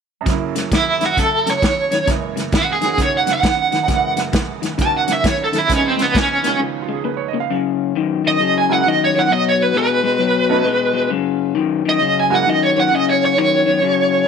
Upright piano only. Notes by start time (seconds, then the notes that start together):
0.21 F#2 C#3
0.26 F#3 A#3
0.32 E4
2.08 F#2 C#3 E3 G#3 A#3
2.81 D#3 A#3 C#4 F#4
3.83 F#2 C#3
3.89 G#3 A#3
3.95 E3
4.78 D#3 A#3 C#4 F#4
5.68 C#2 C#3 F3 B3
5.73 D#4
6.44 D#3 G#3 C#4 F4
6.82 F4
6.93 G#4
7.05 B4
7.17 C#5
7.28 D#5
7.40 F5
8.69 F#3 G#3 A#3 E4
10.49 A3 B3 C#4 D#4
12.30 G#3 A#3 E4 F#4